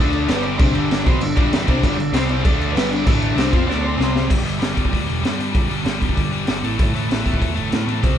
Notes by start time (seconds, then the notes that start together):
Already playing: D2 D4 D5
0.00 D3 A3 D4
0.13 crash
0.28 G1 G2 D3 G3 B3 B4, snare, crash
0.43 D4 D5, crash
0.57 C2 C3 G3 C4 D4 D5, kick, crash
0.74 G1 G2 D3 G3, crash
0.91 snare, crash
1.06 B1 B2 F#3 B3 C4 C5, kick, crash
1.20 G1 G2 D3 D4 D5, crash
1.36 G1 G2 D3 G3 D4 D5, kick, crash
1.53 E3 E4, snare, crash
1.66 C2 C3 G3 C4 D4 D5, kick, crash
1.82 G1 G2 D3 G3, kick, crash
1.97 G1 G2 D3, crash
2.12 C2 C3 G3 C4 C5, snare, crash
2.29 D4 D5, crash
2.44 D2 D3 A3 D4, kick, crash
2.61 crash
2.73 G1 G2 D3 G3 B3 B4, crash
2.78 snare
2.91 D4 D5, crash
3.05 A1 A2 E3 A3 D4 D5, kick, crash
3.22 crash
3.35 C2 C3 G3 C4, crash
3.39 snare
3.51 F2 F3 C4 F4 C5, kick, crash
3.67 D2 D3 A3 D4 D5, snare
3.84 C4 C5
3.97 C2 C3 G3 C4, snare
4.16 snare
4.28 G1 G2 D3 G3, kick, crash
4.43 G1 G2 D3 G3, open hi-hat
4.59 G1 G2 D3 G3, snare, open hi-hat
4.74 G1 G2 D3 G3, kick, open hi-hat
4.85 kick
4.90 D2 G2 D3 G3, kick
4.94 open hi-hat
5.06 E1 G2 D3 G3, open hi-hat
5.21 G2 D3 G3, open hi-hat
5.25 snare
5.37 G2 D3 G3, open hi-hat
5.52 G1 G2 D3 G3, kick, open hi-hat
5.69 G2 D3 G3, open hi-hat
5.85 G1 G2 D3 G3, snare, open hi-hat
6.00 G2 D3 G3, kick, open hi-hat
6.09 kick
6.15 G1 G2 D3 G3, kick, open hi-hat
6.32 G2 D3 G3, open hi-hat
6.47 G1 G2 D3 G3, snare, open hi-hat
6.63 A1 A2 E3 A3, open hi-hat
6.78 A1 A2 E3 A3, kick, open hi-hat
6.95 A1 A2 E3 A3, open hi-hat
7.09 A1 A2 E3 A3, snare, open hi-hat
7.25 A1 A2 E3 A3, kick, open hi-hat
7.34 kick
7.39 E2 A2 E3 A3, kick, open hi-hat
7.54 G1 A2 E3 A3, open hi-hat
7.70 A2 E3 A3, snare, open hi-hat
7.87 A2 E3 A3, open hi-hat
8.02 C2 C3 G3 C4, kick, open hi-hat